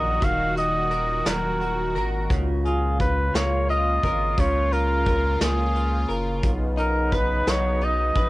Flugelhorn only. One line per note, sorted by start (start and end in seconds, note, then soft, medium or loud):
0.00 0.26 D#5 loud
0.24 0.57 F5 loud
0.58 1.29 D#5 medium
1.27 2.05 A#4 medium
2.65 2.98 G#4 medium
3.01 3.37 B4 medium
3.35 3.69 C#5 medium
3.70 4.41 D#5 loud
4.40 4.74 C#5 loud
4.73 5.41 A#4 medium
5.42 6.15 G#4 medium
6.79 7.17 A#4 medium
7.15 7.51 B4 medium
7.50 7.86 C#5 loud
7.84 8.29 D#5 loud